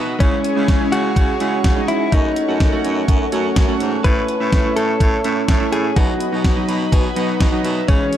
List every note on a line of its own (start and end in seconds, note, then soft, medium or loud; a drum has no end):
0.00 0.13 B2 medium
0.00 0.16 B3 medium
0.00 0.16 D#4 medium
0.00 0.16 F#4 loud
0.00 0.19 B4 medium
0.00 0.19 D#5 medium
0.00 0.19 E5 medium
0.00 0.18 F#5 medium
0.00 0.19 D#6 medium
0.20 0.37 C#3 loud
0.20 0.52 G#3 medium
0.20 0.94 C#4 medium
0.20 0.52 C#4 medium
0.20 0.52 E4 medium
0.20 2.10 G#4 medium
0.20 2.10 C#5 medium
0.20 2.10 G#5 medium
0.20 5.92 C#6 medium
0.20 kick loud
0.20 closed hi-hat medium
0.44 closed hi-hat medium
0.56 0.65 C#3 loud
0.56 0.77 G#3 medium
0.56 0.77 C#4 medium
0.56 0.77 E4 medium
0.68 0.85 C#3 medium
0.68 kick loud
0.68 snare medium
0.68 closed hi-hat medium
0.81 1.33 G#3 medium
0.81 1.33 C#4 medium
0.81 1.33 E4 medium
0.92 1.09 C#3 medium
0.92 1.88 F#4 loud
0.92 closed hi-hat medium
1.16 1.33 C#3 medium
1.16 kick loud
1.16 closed hi-hat medium
1.40 1.57 C#3 medium
1.40 1.72 G#3 medium
1.40 1.72 C#4 medium
1.40 1.72 E4 medium
1.40 closed hi-hat medium
1.64 1.81 C#3 medium
1.64 kick loud
1.64 snare loud
1.64 closed hi-hat medium
1.76 2.08 G#3 medium
1.76 2.08 C#4 medium
1.76 2.08 D#4 medium
1.88 2.13 E4 medium
1.88 closed hi-hat medium
2.12 2.29 F#2 loud
2.12 2.44 A3 medium
2.12 2.44 C#4 medium
2.12 3.04 D#4 medium
2.12 2.44 F#4 medium
2.12 5.93 A4 medium
2.12 4.03 C#5 medium
2.12 4.02 F#5 medium
2.12 kick loud
2.12 closed hi-hat medium
2.36 closed hi-hat medium
2.48 2.57 F#2 medium
2.48 2.69 A3 medium
2.48 2.69 C#4 medium
2.48 2.69 F#4 medium
2.60 2.77 F#2 medium
2.60 kick loud
2.60 snare loud
2.60 closed hi-hat medium
2.72 3.25 A3 medium
2.72 3.25 C#4 medium
2.72 3.25 F#4 loud
2.84 3.01 F#2 loud
2.84 closed hi-hat medium
3.08 3.25 F#2 loud
3.08 kick loud
3.08 closed hi-hat medium
3.32 3.49 F#2 medium
3.32 3.64 A3 medium
3.32 3.64 C#4 medium
3.32 3.64 F#4 medium
3.32 closed hi-hat medium
3.56 3.73 F#2 medium
3.56 kick loud
3.56 snare loud
3.56 closed hi-hat medium
3.68 4.00 A3 medium
3.68 4.00 C#4 medium
3.68 4.00 F#4 medium
3.80 3.97 G#2 medium
3.80 closed hi-hat medium
4.04 4.21 A2 loud
4.04 4.36 A3 medium
4.04 4.36 C#4 medium
4.04 4.36 E4 medium
4.04 4.76 B4 loud
4.04 5.94 C#5 medium
4.04 5.95 E5 medium
4.04 kick loud
4.04 closed hi-hat medium
4.28 closed hi-hat medium
4.40 4.49 A2 medium
4.40 4.61 A3 medium
4.40 4.61 C#4 medium
4.40 4.61 E4 medium
4.52 4.69 A2 medium
4.52 kick loud
4.52 snare loud
4.52 closed hi-hat medium
4.64 5.17 A3 medium
4.64 5.17 C#4 medium
4.64 5.17 E4 medium
4.76 4.93 A2 medium
4.76 5.72 A4 medium
4.76 closed hi-hat medium
5.00 5.17 A2 loud
5.00 kick loud
5.00 closed hi-hat medium
5.24 5.41 A2 loud
5.24 5.56 A3 medium
5.24 5.56 C#4 medium
5.24 5.56 E4 medium
5.24 closed hi-hat medium
5.48 5.65 A2 loud
5.48 kick loud
5.48 snare loud
5.48 closed hi-hat medium
5.60 5.92 A3 medium
5.60 5.92 C#4 medium
5.60 5.92 E4 medium
5.72 5.89 A2 medium
5.72 5.97 G#4 medium
5.72 closed hi-hat medium
5.96 6.13 B2 loud
5.96 6.28 F#3 medium
5.96 6.28 B3 medium
5.96 6.28 D#4 medium
5.96 6.41 F#4 medium
5.96 7.87 F#4 medium
5.96 7.87 B4 medium
5.96 7.87 D#5 medium
5.96 7.87 B5 medium
5.96 kick loud
5.96 closed hi-hat medium
6.20 closed hi-hat medium
6.32 6.41 B2 medium
6.32 6.53 F#3 medium
6.32 6.53 B3 medium
6.32 6.53 D#4 medium
6.44 6.61 B2 medium
6.44 kick loud
6.44 snare loud
6.44 closed hi-hat medium
6.56 7.09 F#3 medium
6.56 7.09 B3 medium
6.56 7.09 D#4 medium
6.68 6.85 B2 loud
6.68 6.91 B5 medium
6.68 closed hi-hat medium
6.92 7.09 B2 loud
6.92 7.15 G#5 medium
6.92 kick loud
6.92 closed hi-hat medium
7.16 7.33 B2 medium
7.16 7.48 F#3 medium
7.16 7.48 B3 medium
7.16 7.48 D#4 medium
7.16 7.39 F#5 medium
7.16 closed hi-hat medium
7.40 7.57 B2 medium
7.40 7.63 D#5 medium
7.40 kick loud
7.40 snare loud
7.40 closed hi-hat medium
7.52 7.84 F#3 medium
7.52 7.84 B3 medium
7.52 7.84 D#4 loud
7.64 7.81 B2 medium
7.64 7.87 E5 medium
7.64 closed hi-hat medium
7.88 8.05 C#3 loud
7.88 8.17 E3 medium
7.88 8.17 G#3 medium
7.88 8.17 C#4 medium
7.88 8.17 G#4 medium
7.88 8.17 C#5 medium
7.88 8.17 G#5 medium
7.88 8.17 C#6 medium
7.88 kick loud
7.88 closed hi-hat medium
8.13 closed hi-hat medium